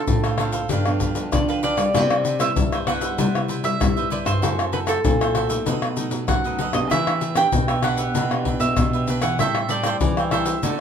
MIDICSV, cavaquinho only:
0, 0, Header, 1, 2, 480
1, 0, Start_track
1, 0, Tempo, 621118
1, 1500, Time_signature, 4, 2, 24, 8
1, 8347, End_track
2, 0, Start_track
2, 0, Title_t, "Cavaquinho"
2, 0, Program_c, 0, 24
2, 187, Note_on_c, 0, 77, 47
2, 193, Note_on_c, 0, 72, 41
2, 202, Note_on_c, 0, 69, 40
2, 294, Note_off_c, 0, 77, 0
2, 297, Note_off_c, 0, 72, 0
2, 299, Note_off_c, 0, 69, 0
2, 302, Note_on_c, 0, 62, 64
2, 308, Note_on_c, 0, 69, 66
2, 315, Note_on_c, 0, 72, 64
2, 317, Note_on_c, 0, 77, 74
2, 401, Note_off_c, 0, 77, 0
2, 410, Note_off_c, 0, 72, 0
2, 411, Note_off_c, 0, 62, 0
2, 411, Note_on_c, 0, 77, 51
2, 414, Note_off_c, 0, 69, 0
2, 419, Note_on_c, 0, 72, 48
2, 425, Note_on_c, 0, 69, 45
2, 526, Note_off_c, 0, 77, 0
2, 530, Note_off_c, 0, 72, 0
2, 533, Note_off_c, 0, 69, 0
2, 542, Note_on_c, 0, 62, 63
2, 549, Note_on_c, 0, 67, 68
2, 558, Note_on_c, 0, 71, 68
2, 560, Note_on_c, 0, 77, 70
2, 771, Note_off_c, 0, 62, 0
2, 775, Note_off_c, 0, 67, 0
2, 779, Note_off_c, 0, 71, 0
2, 779, Note_on_c, 0, 62, 51
2, 780, Note_off_c, 0, 77, 0
2, 784, Note_on_c, 0, 67, 49
2, 791, Note_on_c, 0, 71, 47
2, 798, Note_on_c, 0, 77, 56
2, 1130, Note_off_c, 0, 62, 0
2, 1132, Note_off_c, 0, 67, 0
2, 1136, Note_off_c, 0, 71, 0
2, 1139, Note_off_c, 0, 77, 0
2, 1148, Note_on_c, 0, 77, 47
2, 1158, Note_on_c, 0, 71, 39
2, 1165, Note_on_c, 0, 67, 37
2, 1253, Note_off_c, 0, 67, 0
2, 1254, Note_off_c, 0, 77, 0
2, 1257, Note_off_c, 0, 71, 0
2, 1258, Note_on_c, 0, 62, 69
2, 1262, Note_on_c, 0, 67, 66
2, 1266, Note_on_c, 0, 71, 72
2, 1271, Note_on_c, 0, 77, 72
2, 1359, Note_off_c, 0, 77, 0
2, 1368, Note_off_c, 0, 71, 0
2, 1369, Note_off_c, 0, 62, 0
2, 1369, Note_on_c, 0, 77, 45
2, 1371, Note_off_c, 0, 67, 0
2, 1377, Note_on_c, 0, 71, 44
2, 1385, Note_on_c, 0, 67, 40
2, 1485, Note_off_c, 0, 77, 0
2, 1489, Note_off_c, 0, 71, 0
2, 1493, Note_off_c, 0, 67, 0
2, 1505, Note_on_c, 0, 64, 66
2, 1508, Note_on_c, 0, 71, 74
2, 1515, Note_on_c, 0, 72, 73
2, 1522, Note_on_c, 0, 76, 70
2, 1733, Note_off_c, 0, 64, 0
2, 1734, Note_off_c, 0, 71, 0
2, 1738, Note_off_c, 0, 72, 0
2, 1741, Note_off_c, 0, 76, 0
2, 1741, Note_on_c, 0, 64, 45
2, 1748, Note_on_c, 0, 71, 45
2, 1752, Note_on_c, 0, 72, 46
2, 1756, Note_on_c, 0, 76, 52
2, 1846, Note_off_c, 0, 64, 0
2, 1846, Note_off_c, 0, 71, 0
2, 1852, Note_off_c, 0, 72, 0
2, 1855, Note_off_c, 0, 76, 0
2, 1855, Note_on_c, 0, 64, 62
2, 1855, Note_on_c, 0, 71, 70
2, 1861, Note_on_c, 0, 72, 77
2, 1864, Note_on_c, 0, 76, 77
2, 1927, Note_off_c, 0, 64, 0
2, 1928, Note_off_c, 0, 71, 0
2, 1930, Note_off_c, 0, 72, 0
2, 1932, Note_off_c, 0, 76, 0
2, 2106, Note_on_c, 0, 76, 47
2, 2117, Note_on_c, 0, 72, 43
2, 2125, Note_on_c, 0, 71, 35
2, 2214, Note_off_c, 0, 76, 0
2, 2218, Note_off_c, 0, 71, 0
2, 2219, Note_off_c, 0, 72, 0
2, 2220, Note_on_c, 0, 64, 63
2, 2227, Note_on_c, 0, 71, 67
2, 2232, Note_on_c, 0, 72, 72
2, 2238, Note_on_c, 0, 76, 81
2, 2324, Note_off_c, 0, 76, 0
2, 2330, Note_off_c, 0, 64, 0
2, 2334, Note_off_c, 0, 71, 0
2, 2334, Note_on_c, 0, 76, 50
2, 2336, Note_off_c, 0, 72, 0
2, 2344, Note_on_c, 0, 72, 41
2, 2352, Note_on_c, 0, 71, 39
2, 2447, Note_off_c, 0, 76, 0
2, 2453, Note_off_c, 0, 72, 0
2, 2456, Note_off_c, 0, 71, 0
2, 2460, Note_on_c, 0, 64, 62
2, 2465, Note_on_c, 0, 71, 67
2, 2472, Note_on_c, 0, 72, 74
2, 2478, Note_on_c, 0, 76, 72
2, 2683, Note_off_c, 0, 64, 0
2, 2690, Note_off_c, 0, 71, 0
2, 2692, Note_on_c, 0, 64, 47
2, 2696, Note_off_c, 0, 72, 0
2, 2699, Note_off_c, 0, 76, 0
2, 2699, Note_on_c, 0, 71, 50
2, 2707, Note_on_c, 0, 72, 54
2, 2709, Note_on_c, 0, 76, 56
2, 3047, Note_off_c, 0, 64, 0
2, 3050, Note_off_c, 0, 71, 0
2, 3054, Note_off_c, 0, 72, 0
2, 3055, Note_off_c, 0, 76, 0
2, 3065, Note_on_c, 0, 76, 47
2, 3072, Note_on_c, 0, 72, 46
2, 3080, Note_on_c, 0, 71, 38
2, 3169, Note_off_c, 0, 71, 0
2, 3171, Note_on_c, 0, 64, 62
2, 3173, Note_off_c, 0, 76, 0
2, 3176, Note_off_c, 0, 72, 0
2, 3178, Note_on_c, 0, 71, 72
2, 3185, Note_on_c, 0, 72, 72
2, 3188, Note_on_c, 0, 76, 71
2, 3285, Note_off_c, 0, 76, 0
2, 3286, Note_off_c, 0, 64, 0
2, 3290, Note_off_c, 0, 71, 0
2, 3293, Note_off_c, 0, 72, 0
2, 3294, Note_on_c, 0, 76, 51
2, 3303, Note_on_c, 0, 72, 44
2, 3311, Note_on_c, 0, 71, 40
2, 3408, Note_off_c, 0, 76, 0
2, 3412, Note_off_c, 0, 72, 0
2, 3416, Note_off_c, 0, 71, 0
2, 3417, Note_on_c, 0, 66, 64
2, 3425, Note_on_c, 0, 69, 66
2, 3428, Note_on_c, 0, 72, 70
2, 3435, Note_on_c, 0, 76, 74
2, 3641, Note_off_c, 0, 66, 0
2, 3648, Note_off_c, 0, 69, 0
2, 3650, Note_on_c, 0, 66, 48
2, 3655, Note_off_c, 0, 72, 0
2, 3657, Note_on_c, 0, 69, 49
2, 3658, Note_off_c, 0, 76, 0
2, 3662, Note_on_c, 0, 72, 51
2, 3666, Note_on_c, 0, 76, 50
2, 3766, Note_off_c, 0, 66, 0
2, 3769, Note_off_c, 0, 69, 0
2, 3772, Note_off_c, 0, 72, 0
2, 3774, Note_off_c, 0, 76, 0
2, 3777, Note_on_c, 0, 66, 68
2, 3777, Note_on_c, 0, 69, 72
2, 3781, Note_on_c, 0, 72, 72
2, 3785, Note_on_c, 0, 76, 70
2, 3849, Note_off_c, 0, 66, 0
2, 3849, Note_off_c, 0, 69, 0
2, 3851, Note_off_c, 0, 72, 0
2, 3853, Note_off_c, 0, 76, 0
2, 4028, Note_on_c, 0, 76, 47
2, 4039, Note_on_c, 0, 72, 45
2, 4041, Note_on_c, 0, 69, 36
2, 4133, Note_off_c, 0, 69, 0
2, 4134, Note_on_c, 0, 66, 62
2, 4135, Note_off_c, 0, 76, 0
2, 4137, Note_off_c, 0, 72, 0
2, 4142, Note_on_c, 0, 69, 63
2, 4146, Note_on_c, 0, 72, 70
2, 4153, Note_on_c, 0, 76, 70
2, 4238, Note_off_c, 0, 76, 0
2, 4247, Note_on_c, 0, 76, 46
2, 4248, Note_off_c, 0, 66, 0
2, 4248, Note_off_c, 0, 72, 0
2, 4252, Note_off_c, 0, 69, 0
2, 4257, Note_on_c, 0, 72, 45
2, 4265, Note_on_c, 0, 69, 39
2, 4365, Note_off_c, 0, 76, 0
2, 4369, Note_off_c, 0, 72, 0
2, 4373, Note_off_c, 0, 69, 0
2, 4381, Note_on_c, 0, 63, 62
2, 4387, Note_on_c, 0, 69, 68
2, 4388, Note_on_c, 0, 71, 70
2, 4394, Note_on_c, 0, 75, 70
2, 4602, Note_off_c, 0, 63, 0
2, 4608, Note_off_c, 0, 69, 0
2, 4611, Note_on_c, 0, 63, 43
2, 4615, Note_off_c, 0, 71, 0
2, 4618, Note_off_c, 0, 75, 0
2, 4618, Note_on_c, 0, 69, 49
2, 4625, Note_on_c, 0, 71, 48
2, 4629, Note_on_c, 0, 75, 49
2, 4967, Note_off_c, 0, 63, 0
2, 4970, Note_off_c, 0, 69, 0
2, 4974, Note_off_c, 0, 71, 0
2, 4976, Note_off_c, 0, 75, 0
2, 4986, Note_on_c, 0, 75, 46
2, 4994, Note_on_c, 0, 71, 43
2, 5001, Note_on_c, 0, 69, 40
2, 5089, Note_on_c, 0, 63, 67
2, 5090, Note_off_c, 0, 69, 0
2, 5093, Note_off_c, 0, 71, 0
2, 5094, Note_off_c, 0, 75, 0
2, 5100, Note_on_c, 0, 69, 69
2, 5102, Note_on_c, 0, 71, 69
2, 5109, Note_on_c, 0, 75, 73
2, 5195, Note_off_c, 0, 75, 0
2, 5204, Note_off_c, 0, 71, 0
2, 5204, Note_on_c, 0, 75, 43
2, 5206, Note_off_c, 0, 63, 0
2, 5211, Note_off_c, 0, 69, 0
2, 5213, Note_on_c, 0, 71, 42
2, 5221, Note_on_c, 0, 69, 36
2, 5324, Note_off_c, 0, 75, 0
2, 5328, Note_off_c, 0, 71, 0
2, 5330, Note_on_c, 0, 62, 59
2, 5332, Note_off_c, 0, 69, 0
2, 5338, Note_on_c, 0, 67, 65
2, 5341, Note_on_c, 0, 71, 69
2, 5347, Note_on_c, 0, 76, 67
2, 5563, Note_off_c, 0, 62, 0
2, 5570, Note_off_c, 0, 67, 0
2, 5572, Note_off_c, 0, 71, 0
2, 5572, Note_on_c, 0, 62, 47
2, 5575, Note_off_c, 0, 76, 0
2, 5579, Note_on_c, 0, 67, 46
2, 5586, Note_on_c, 0, 71, 47
2, 5591, Note_on_c, 0, 76, 51
2, 5678, Note_off_c, 0, 62, 0
2, 5683, Note_off_c, 0, 67, 0
2, 5684, Note_off_c, 0, 71, 0
2, 5687, Note_on_c, 0, 62, 62
2, 5688, Note_off_c, 0, 76, 0
2, 5692, Note_on_c, 0, 67, 76
2, 5693, Note_on_c, 0, 71, 69
2, 5697, Note_on_c, 0, 76, 72
2, 5764, Note_off_c, 0, 62, 0
2, 5767, Note_off_c, 0, 67, 0
2, 5767, Note_off_c, 0, 71, 0
2, 5769, Note_off_c, 0, 76, 0
2, 5939, Note_on_c, 0, 76, 50
2, 5950, Note_on_c, 0, 71, 39
2, 5956, Note_on_c, 0, 67, 38
2, 6048, Note_off_c, 0, 67, 0
2, 6051, Note_off_c, 0, 76, 0
2, 6052, Note_on_c, 0, 62, 68
2, 6055, Note_off_c, 0, 71, 0
2, 6058, Note_on_c, 0, 67, 72
2, 6064, Note_on_c, 0, 71, 71
2, 6066, Note_on_c, 0, 76, 69
2, 6158, Note_off_c, 0, 76, 0
2, 6166, Note_off_c, 0, 71, 0
2, 6167, Note_off_c, 0, 62, 0
2, 6167, Note_on_c, 0, 76, 52
2, 6170, Note_off_c, 0, 67, 0
2, 6176, Note_on_c, 0, 71, 45
2, 6184, Note_on_c, 0, 67, 41
2, 6285, Note_off_c, 0, 76, 0
2, 6289, Note_off_c, 0, 71, 0
2, 6293, Note_off_c, 0, 67, 0
2, 6301, Note_on_c, 0, 62, 62
2, 6309, Note_on_c, 0, 67, 71
2, 6316, Note_on_c, 0, 71, 65
2, 6318, Note_on_c, 0, 76, 66
2, 6532, Note_off_c, 0, 62, 0
2, 6536, Note_off_c, 0, 67, 0
2, 6540, Note_off_c, 0, 71, 0
2, 6540, Note_off_c, 0, 76, 0
2, 6541, Note_on_c, 0, 62, 46
2, 6548, Note_on_c, 0, 67, 48
2, 6553, Note_on_c, 0, 71, 50
2, 6558, Note_on_c, 0, 76, 51
2, 6892, Note_off_c, 0, 62, 0
2, 6895, Note_off_c, 0, 67, 0
2, 6898, Note_off_c, 0, 71, 0
2, 6900, Note_off_c, 0, 76, 0
2, 6910, Note_on_c, 0, 76, 44
2, 6917, Note_on_c, 0, 71, 42
2, 6926, Note_on_c, 0, 67, 39
2, 7014, Note_off_c, 0, 67, 0
2, 7016, Note_off_c, 0, 76, 0
2, 7017, Note_on_c, 0, 62, 69
2, 7020, Note_off_c, 0, 71, 0
2, 7024, Note_on_c, 0, 67, 66
2, 7030, Note_on_c, 0, 71, 71
2, 7033, Note_on_c, 0, 76, 73
2, 7120, Note_off_c, 0, 76, 0
2, 7128, Note_off_c, 0, 71, 0
2, 7129, Note_on_c, 0, 76, 48
2, 7130, Note_off_c, 0, 62, 0
2, 7133, Note_off_c, 0, 67, 0
2, 7137, Note_on_c, 0, 71, 40
2, 7144, Note_on_c, 0, 67, 43
2, 7246, Note_off_c, 0, 76, 0
2, 7250, Note_off_c, 0, 71, 0
2, 7253, Note_off_c, 0, 67, 0
2, 7267, Note_on_c, 0, 69, 69
2, 7276, Note_on_c, 0, 72, 69
2, 7280, Note_on_c, 0, 76, 69
2, 7283, Note_on_c, 0, 79, 72
2, 7489, Note_off_c, 0, 69, 0
2, 7498, Note_off_c, 0, 76, 0
2, 7498, Note_on_c, 0, 69, 43
2, 7499, Note_off_c, 0, 72, 0
2, 7502, Note_off_c, 0, 79, 0
2, 7507, Note_on_c, 0, 72, 53
2, 7507, Note_on_c, 0, 76, 52
2, 7513, Note_on_c, 0, 79, 51
2, 7610, Note_off_c, 0, 69, 0
2, 7615, Note_off_c, 0, 72, 0
2, 7615, Note_off_c, 0, 76, 0
2, 7617, Note_off_c, 0, 79, 0
2, 7619, Note_on_c, 0, 69, 65
2, 7624, Note_on_c, 0, 72, 75
2, 7627, Note_on_c, 0, 76, 77
2, 7628, Note_on_c, 0, 79, 78
2, 7690, Note_off_c, 0, 69, 0
2, 7692, Note_off_c, 0, 72, 0
2, 7694, Note_off_c, 0, 76, 0
2, 7695, Note_off_c, 0, 79, 0
2, 7871, Note_on_c, 0, 79, 46
2, 7880, Note_on_c, 0, 76, 40
2, 7887, Note_on_c, 0, 72, 42
2, 7973, Note_off_c, 0, 72, 0
2, 7976, Note_off_c, 0, 79, 0
2, 7976, Note_on_c, 0, 69, 70
2, 7979, Note_off_c, 0, 76, 0
2, 7982, Note_on_c, 0, 72, 67
2, 7988, Note_on_c, 0, 76, 78
2, 7991, Note_on_c, 0, 79, 80
2, 8081, Note_off_c, 0, 79, 0
2, 8089, Note_off_c, 0, 69, 0
2, 8090, Note_off_c, 0, 76, 0
2, 8090, Note_on_c, 0, 79, 45
2, 8092, Note_off_c, 0, 72, 0
2, 8100, Note_on_c, 0, 76, 46
2, 8107, Note_on_c, 0, 72, 41
2, 8206, Note_off_c, 0, 79, 0
2, 8211, Note_off_c, 0, 76, 0
2, 8215, Note_off_c, 0, 72, 0
2, 8215, Note_on_c, 0, 66, 64
2, 8224, Note_on_c, 0, 69, 61
2, 8227, Note_on_c, 0, 72, 68
2, 8230, Note_on_c, 0, 74, 80
2, 8347, Note_off_c, 0, 66, 0
2, 8347, Note_off_c, 0, 69, 0
2, 8347, Note_off_c, 0, 72, 0
2, 8347, Note_off_c, 0, 74, 0
2, 8347, End_track
0, 0, End_of_file